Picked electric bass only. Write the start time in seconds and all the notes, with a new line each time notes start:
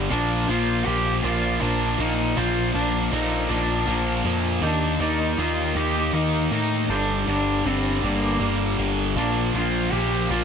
0.11 A#1
0.48 A#1
0.86 A#1
1.24 A#1
1.62 A#1
1.99 A#1
2.37 A#1
2.74 A#1
3.12 A#1
3.50 A#1
3.87 A#1
4.25 F2
4.61 D#2
5.00 D#2
5.38 D#2
5.75 D#2
6.13 D#2
6.51 A2
6.88 G1
7.27 G1
7.65 G1
8.03 G1
8.40 G1
8.78 G1
9.15 A#1
9.54 A#1
9.92 A#1
10.30 A#1